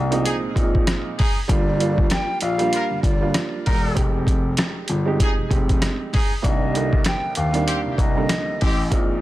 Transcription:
Already playing: grand piano C2
0.11 upright piano A#2 F3 G#3 C4 D#4, closed hi-hat
0.25 trumpet section D#4 G#4, closed hi-hat
0.43 grand piano A#1
0.55 grand piano A#1, upright piano A#2 F3 G#3 C4 D#4, kick, closed hi-hat
0.75 kick
0.87 cross-stick, snare, closed hi-hat
1.18 trumpet section D#4 G#4, kick, open hi-hat
1.48 grand piano G1, upright piano G3 A#3 D4 F4, flute D5, kick, closed hi-hat
1.80 upright piano G3 A#3 D4 F4, closed hi-hat
1.98 kick
2.10 flute G5, cross-stick, snare, closed hi-hat
2.41 grand piano A#1, flute F5, closed hi-hat
2.58 upright piano G3 A#3 D4 F4, closed hi-hat
2.73 trumpet section G3 F4 A#4, closed hi-hat
2.91 grand piano G1
3.03 grand piano G1, flute D5, kick, closed hi-hat
3.20 upright piano G3 A#3 D4 F4
3.34 cross-stick, snare, closed hi-hat
3.66 grand piano E1, trumpet section D#4 A#4, kick, open hi-hat
3.95 grand piano F1, upright piano G#3 C4 D#4 G4, kick, closed hi-hat
4.27 kick, closed hi-hat
4.57 cross-stick, snare, closed hi-hat
4.88 grand piano G1, closed hi-hat
5.05 upright piano G#3 C4 D#4 G4
5.20 trumpet section D#4 G#4, kick, closed hi-hat
5.38 grand piano F1
5.50 grand piano F1, upright piano G#3 C4 D#4 G4, kick, closed hi-hat
5.69 kick, closed hi-hat
5.82 cross-stick, snare, closed hi-hat
6.13 trumpet section D#4 G#4, kick, snare, open hi-hat
6.42 upright piano C2 D#3 G3 A#3 D4, grand piano C2, flute D#5, kick, closed hi-hat
6.74 upright piano C2 D3 D#3 G3 A#3, closed hi-hat
6.93 kick
7.04 flute G5, cross-stick, snare, closed hi-hat
7.35 grand piano D#2, flute F5, closed hi-hat
7.53 upright piano C2 D#3 G3 A#3 D4, closed hi-hat
7.67 trumpet section C4 G4, closed hi-hat
7.85 grand piano C2
7.98 grand piano C2, flute D#5, kick, closed hi-hat
8.15 upright piano C2 D3 D#3 G3 A#3
8.29 cross-stick, snare, closed hi-hat
8.61 grand piano A1, trumpet section C4 G4, kick, open hi-hat
8.90 grand piano A#1, upright piano A#2 F3 G#3 C4 D#4, kick, closed hi-hat

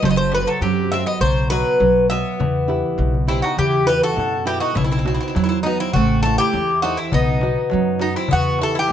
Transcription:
0.02 upright bass F#1, nylon-string guitar F#3, bouzouki A3 C5, darbuka dum
0.10 bouzouki B3 D#5
0.16 bouzouki A3 C5
0.31 bouzouki G3 B4, nylon-string guitar F#4 A4 C5, darbuka tek
0.47 bouzouki F#3 A4
0.61 upright bass F#2, bouzouki C3 G4, nylon-string guitar F#3, darbuka tek
0.91 bouzouki C4 E5, nylon-string guitar F#4 A4 C5, darbuka tek
1.06 bouzouki B3 D#5
1.21 upright bass B1, bouzouki F#3 C5, nylon-string guitar B3, darbuka dum
1.50 bouzouki F#3 B4, nylon-string guitar F#4 B4 D#5, darbuka tek
1.80 upright bass B1, nylon-string guitar F#3, darbuka tek
2.10 bouzouki B3 E5, nylon-string guitar F#4 B4 D#5, darbuka tek
2.40 upright bass E2, nylon-string guitar E3, darbuka dum
2.68 nylon-string guitar E4 G4 B4, darbuka tek
2.86 darbuka tek
2.98 upright bass B1, nylon-string guitar B2, darbuka dum
3.14 darbuka dum
3.27 bouzouki C4 E4, nylon-string guitar E4 G4 B4, darbuka tek
3.42 bouzouki D#4 F#4, darbuka tek
3.57 upright bass E2, nylon-string guitar E3, bouzouki E4 G4, darbuka dum
3.86 nylon-string guitar E4 F#4 B4, bouzouki G4 B4, darbuka tek
4.03 bouzouki F#4 A4
4.16 upright bass F#2, nylon-string guitar B2, darbuka tek
4.45 nylon-string guitar E4 F#4 B4, bouzouki E4 G4, darbuka tek
4.60 bouzouki D#4 F#4
4.75 upright bass B1, nylon-string guitar B2, bouzouki B3 E4, darbuka dum
4.84 bouzouki C4 E4
4.92 bouzouki C4 E4
4.98 bouzouki C4 E4
5.05 nylon-string guitar B3 D#4 F#4, bouzouki C4 E4, darbuka tek
5.15 bouzouki C4 E4
5.21 bouzouki C4 E4
5.28 bouzouki C4 E4
5.35 upright bass E2, nylon-string guitar F#3, bouzouki C4 E4, darbuka tek
5.44 bouzouki C4 E4
5.49 bouzouki C4 E4
5.63 nylon-string guitar B3 D#4 F#4, bouzouki B3 D#4, darbuka tek
5.80 bouzouki C4 E4, darbuka tek
5.93 upright bass A1, nylon-string guitar A3, bouzouki C4 F#4, darbuka dum
6.23 nylon-string guitar E4 A4 C5, bouzouki F#4 A4, darbuka tek
6.38 bouzouki E4 G4
6.54 upright bass E2, nylon-string guitar E3, darbuka tek
6.82 bouzouki D#4 F#4, nylon-string guitar E4 A4 C5, darbuka tek
6.97 bouzouki C4 E4
7.12 upright bass B1, bouzouki B3 D#4, nylon-string guitar B3, darbuka dum
7.41 nylon-string guitar F#4 B4 D#5, darbuka tek
7.56 darbuka tek
7.70 upright bass F#2, nylon-string guitar F#3, darbuka tek
7.99 bouzouki B3 D#4, nylon-string guitar F#4 B4 D#5, darbuka tek
8.15 bouzouki C4 E4, darbuka tek
8.28 upright bass E2, nylon-string guitar E3, bouzouki B3, darbuka dum
8.33 bouzouki F#4
8.59 nylon-string guitar E4 G4 B4, bouzouki F#4, darbuka tek
8.63 bouzouki A4
8.75 bouzouki E4
8.79 bouzouki G4
8.88 darbuka tek

